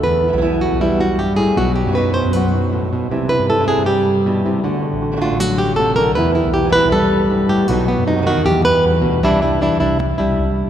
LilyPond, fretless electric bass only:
\new Staff \with { instrumentName = "Fretless electric bass" } { \clef bass \time 4/4 \key e \minor \tempo 4 = 157 e,8. b,,4 b,,2 r16 | b,,8. fis,4 fis,2~ fis,16 | c,8. g,4 g,2~ g,16 | d,8. a,,4 a,,2~ a,,16 |
e,8. b,,4 b,,2 r16 | b,,8. fis,4 dis,16 e,4 e,8 d,8 | c,4. c,4 c,8 c,8. r16 | }